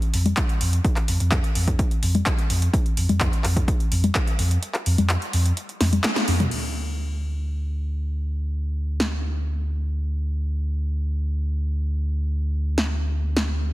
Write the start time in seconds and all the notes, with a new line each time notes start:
0.02 closed hi-hat
0.14 F2, open hi-hat
0.26 closed hi-hat, low conga
0.37 kick, clap, closed hi-hat
0.49 closed hi-hat
0.61 F2, open hi-hat
0.73 closed hi-hat
0.85 kick, closed hi-hat
0.96 clap, closed hi-hat
1.08 F2, open hi-hat
1.20 F2, closed hi-hat
1.31 kick, clap, closed hi-hat
1.44 closed hi-hat
1.55 F2, open hi-hat
1.68 kick, closed hi-hat
1.79 kick, closed hi-hat
1.91 closed hi-hat
2.03 F2, open hi-hat
2.15 closed hi-hat, low conga
2.26 kick, clap, closed hi-hat
2.39 closed hi-hat
2.50 F2, open hi-hat
2.62 closed hi-hat
2.73 kick, closed hi-hat
2.86 closed hi-hat
2.97 F2, open hi-hat
3.09 F2, closed hi-hat, low conga
3.20 kick, clap, closed hi-hat
3.33 closed hi-hat
3.44 F2, clap, open hi-hat
3.56 kick, closed hi-hat
3.68 kick, closed hi-hat
3.80 closed hi-hat
3.92 F2, open hi-hat
4.04 closed hi-hat, low conga
4.15 kick, clap, closed hi-hat
4.27 closed hi-hat
4.39 F2, open hi-hat
4.51 closed hi-hat
4.63 closed hi-hat
4.74 clap, closed hi-hat
4.86 F2, open hi-hat
4.98 F2, closed hi-hat, low conga
5.09 clap, closed hi-hat
5.22 closed hi-hat
5.33 F2, open hi-hat
5.46 closed hi-hat
5.57 closed hi-hat
5.69 closed hi-hat
5.80 F2, snare, open hi-hat
5.93 closed hi-hat, low conga
6.04 snare, clap, closed hi-hat
6.16 snare, closed hi-hat
6.28 F2, open hi-hat
6.40 closed hi-hat, mid tom, low conga
6.51 D2, crash
9.00 snare
12.78 snare
13.37 snare